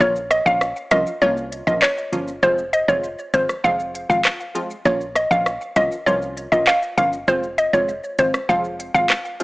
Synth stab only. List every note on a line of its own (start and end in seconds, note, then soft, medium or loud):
0.00 0.19 F3 medium
0.00 0.19 A#3 medium
0.00 0.20 C#4 medium
0.00 0.20 F4 loud
0.45 0.65 F3 medium
0.45 0.65 A#3 medium
0.45 0.65 C#4 medium
0.45 0.65 F4 medium
0.91 1.10 F3 medium
0.91 1.10 A#3 medium
0.91 1.11 C#4 medium
0.91 1.11 F4 medium
1.21 1.63 F3 loud
1.21 1.64 A#3 medium
1.21 1.64 C#4 medium
1.21 1.64 F4 loud
1.67 1.86 F3 medium
1.67 1.86 A#3 medium
1.67 1.86 C#4 medium
1.67 1.86 F4 medium
2.12 2.32 F3 medium
2.12 2.32 A#3 medium
2.12 2.32 C#4 medium
2.12 2.32 F4 medium
2.42 2.62 F3 medium
2.42 2.62 G#3 medium
2.42 2.62 C4 medium
2.42 2.62 F4 loud
2.88 3.07 F3 medium
2.88 3.07 G#3 medium
2.88 3.08 C4 medium
2.88 3.08 F4 medium
3.33 3.53 F3 medium
3.33 3.53 G#3 medium
3.33 3.53 C4 medium
3.33 3.53 F4 medium
3.64 4.06 F3 medium
3.64 4.06 G#3 medium
3.64 4.06 C4 medium
3.64 4.06 F4 loud
4.09 4.29 F3 medium
4.09 4.29 G#3 medium
4.09 4.29 C4 medium
4.09 4.29 F4 medium
4.55 4.74 F3 medium
4.55 4.74 G#3 medium
4.55 4.74 C4 medium
4.55 4.74 F4 medium
4.85 5.04 F3 loud
4.85 5.04 A#3 medium
4.85 5.05 C#4 medium
4.85 5.05 F4 loud
5.31 5.50 F3 medium
5.31 5.50 A#3 medium
5.31 5.50 C#4 medium
5.31 5.50 F4 medium
5.76 5.95 F3 medium
5.76 5.95 A#3 medium
5.76 5.96 C#4 medium
5.76 5.96 F4 medium
6.06 6.48 F3 loud
6.06 6.48 A#3 medium
6.06 6.49 C#4 medium
6.06 6.49 F4 loud
6.52 6.71 F3 medium
6.52 6.71 A#3 medium
6.52 6.71 C#4 medium
6.52 6.71 F4 medium
6.97 7.17 F3 medium
6.97 7.17 A#3 medium
6.97 7.17 C#4 medium
6.97 7.17 F4 medium
7.28 7.47 F3 medium
7.28 7.47 G#3 medium
7.28 7.47 C4 medium
7.28 7.47 F4 loud
7.73 7.92 F3 medium
7.73 7.92 G#3 medium
7.73 7.92 C4 medium
7.73 7.93 F4 medium
8.18 8.38 F3 medium
8.18 8.38 G#3 medium
8.18 8.38 C4 medium
8.18 8.38 F4 medium
8.49 8.91 F3 medium
8.49 8.91 G#3 medium
8.49 8.91 C4 medium
8.49 8.91 F4 loud
8.94 9.14 F3 medium
8.94 9.14 G#3 medium
8.94 9.14 C4 medium
8.94 9.14 F4 medium
9.40 9.43 F3 medium
9.40 9.43 G#3 medium
9.40 9.43 C4 medium